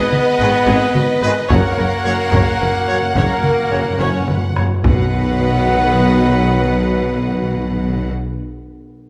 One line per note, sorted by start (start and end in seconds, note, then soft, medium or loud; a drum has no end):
0.00 1.31 B3 loud
0.00 1.50 D#4 loud
0.00 1.47 G#4 loud
0.00 1.50 B4 loud
0.00 1.46 D#5 loud
0.00 1.50 D#5 loud
0.12 taiko mid medium
0.39 0.47 G#1 loud
0.39 0.50 G#1 loud
0.39 0.48 G#2 loud
0.39 0.50 D#3 loud
0.39 0.50 G#3 loud
0.39 0.47 G#4 loud
0.39 0.49 B4 loud
0.66 0.75 G#1 loud
0.66 0.78 G#1 loud
0.66 0.76 G#2 loud
0.66 0.92 G#4 loud
0.94 1.02 G#1 loud
0.94 1.06 G#1 medium
0.94 1.02 G#2 medium
0.94 1.03 F#4 loud
0.94 taiko mid medium
1.21 1.30 G#1 medium
1.21 1.33 G#1 medium
1.21 1.31 G#2 medium
1.21 1.32 D#3 loud
1.21 1.32 G#3 loud
1.21 1.29 G#4 loud
1.21 1.32 B4 loud
1.48 1.61 F#1 loud
1.48 1.58 F#1 loud
1.48 1.58 F#2 loud
1.48 3.11 A#3 loud
1.48 4.55 C#4 loud
1.48 4.56 F#4 loud
1.48 3.15 A#4 loud
1.48 2.88 A#4 loud
1.48 2.03 C#5 loud
1.48 4.56 C#5 loud
1.48 4.59 F#5 loud
1.48 4.56 F#5 loud
1.48 taiko loud
1.66 1.72 F#2 soft
1.74 1.88 F#1 medium
1.74 1.85 F#1 loud
1.74 1.80 F#2 soft
1.74 1.85 B4 medium
1.78 1.86 F#2 medium
1.78 1.87 F#2 soft
1.89 1.94 F#2 medium
1.95 2.02 F#2 soft
2.03 2.13 F#1 medium
2.03 2.16 F#1 medium
2.03 2.09 F#2 soft
2.03 2.14 F#2 medium
2.03 2.14 C#3 loud
2.03 2.14 F#3 medium
2.03 2.12 C#5 medium
2.03 2.14 C#5 loud
2.10 2.17 F#2 medium
2.19 2.24 F#2 medium
2.25 2.31 F#2 medium
2.32 2.40 F#1 loud
2.32 2.44 F#1 loud
2.32 2.40 F#2 loud
2.32 2.39 F#2 medium
2.32 2.58 C#5 loud
2.32 taiko loud
2.41 2.47 F#2 medium
2.48 2.54 F#2 medium
2.55 2.61 F#2 medium
2.60 2.68 F#1 medium
2.60 2.72 F#1 loud
2.60 2.69 F#2 medium
2.60 2.68 B4 medium
2.70 2.76 F#2 medium
2.77 2.83 F#2 medium
2.85 2.91 F#2 medium
2.85 2.97 C#3 medium
2.85 2.97 F#3 loud
2.85 2.97 C#5 loud
2.93 2.99 F#2 medium
3.00 3.06 F#2 medium
3.07 3.13 F#2 medium
3.14 3.24 F#1 loud
3.14 3.27 F#1 loud
3.14 3.21 F#2 medium
3.14 3.23 F#2 loud
3.14 3.97 A#3 loud
3.14 3.98 A#4 loud
3.14 3.41 C#5 loud
3.14 taiko medium
3.23 3.28 F#2 medium
3.29 3.35 F#2 medium
3.36 3.43 F#2 medium
3.43 3.50 F#2 medium
3.43 taiko mid medium
3.51 3.57 F#2 medium
3.58 3.65 F#2 medium
3.67 3.73 F#2 medium
3.67 3.80 C#3 medium
3.67 3.80 F#3 loud
3.67 3.79 C#5 medium
3.71 3.83 F#1 medium
3.71 3.80 F#1 medium
3.71 3.79 F#2 medium
3.71 3.81 C#5 medium
3.75 3.81 F#2 medium
3.83 3.89 F#2 loud
3.90 3.96 F#2 loud
3.97 4.07 F#1 loud
3.97 4.11 F#1 loud
3.97 4.04 F#2 loud
3.97 4.07 F#2 loud
3.97 4.27 C#4 loud
3.97 4.25 C#5 loud
3.97 4.28 C#5 loud
4.05 4.11 F#2 loud
4.13 4.19 F#2 loud
4.20 4.27 F#2 loud
4.27 4.36 F#1 medium
4.27 4.40 F#1 medium
4.27 4.35 F#2 medium
4.27 4.34 F#2 loud
4.27 4.36 B4 medium
4.27 taiko mid medium
4.35 4.42 F#2 loud
4.43 4.50 F#2 loud
4.51 4.57 F#2 loud
4.56 4.64 F#1 medium
4.56 4.68 F#1 medium
4.56 4.65 F#2 medium
4.56 4.64 F#2 loud
4.56 4.67 C#3 medium
4.56 4.67 F#3 medium
4.56 4.66 C#5 medium
4.56 4.64 C#5 medium
4.56 taiko rim soft
4.65 4.72 F#2 loud
4.74 4.80 F#2 loud
4.84 8.09 B1 medium
4.84 8.10 B1 medium
4.84 8.09 B2 loud
4.84 4.92 B2 medium
4.84 8.09 D#3 loud
4.84 8.09 F#3 medium
4.84 8.09 B3 loud
4.84 8.09 D#4 loud
4.84 8.09 F#4 loud
4.84 8.08 B4 loud
4.84 8.08 B4 medium
4.84 8.09 B4 loud
4.84 8.09 B4 medium
4.84 8.09 D#5 medium
4.84 8.09 F#5 loud
4.84 8.10 F#5 medium
4.84 taiko loud
4.92 4.98 B2 medium
4.98 5.05 B2 medium
5.05 5.12 B2 medium
5.12 5.18 B2 medium
5.18 5.24 B2 medium
5.24 5.31 B2 loud
5.32 5.39 B2 medium
5.39 5.46 B2 medium
5.46 5.53 B2 medium
5.53 5.60 B2 medium
5.60 5.67 B2 medium
5.67 5.74 B2 loud
5.74 5.81 B2 medium
5.81 5.87 B2 loud
5.87 5.93 B2 medium
5.93 6.00 B2 medium
6.00 6.07 B2 loud
6.07 6.14 B2 loud
6.14 6.20 B2 medium
6.21 6.27 B2 medium
6.27 6.34 B2 medium
6.34 6.41 B2 medium
6.42 6.48 B2 medium
6.48 6.55 B2 medium
6.55 6.62 B2 medium
6.63 6.70 B2 loud
6.70 6.76 B2 medium
6.76 6.83 B2 loud
6.83 6.89 B2 medium
6.89 6.96 B2 loud
6.96 7.02 B2 medium
7.03 7.09 B2 medium
7.09 7.16 B2 medium
7.16 7.23 B2 medium
7.23 7.29 B2 medium
7.29 7.36 B2 medium
7.36 7.43 B2 medium
7.43 7.50 B2 medium
7.50 7.56 B2 medium
7.57 7.63 B2 medium
7.64 7.71 B2 medium
7.71 7.77 B2 medium
7.77 7.83 B2 medium
7.83 7.90 B2 medium
7.90 7.96 B2 medium
7.96 8.03 B2 loud
8.03 8.10 B2 medium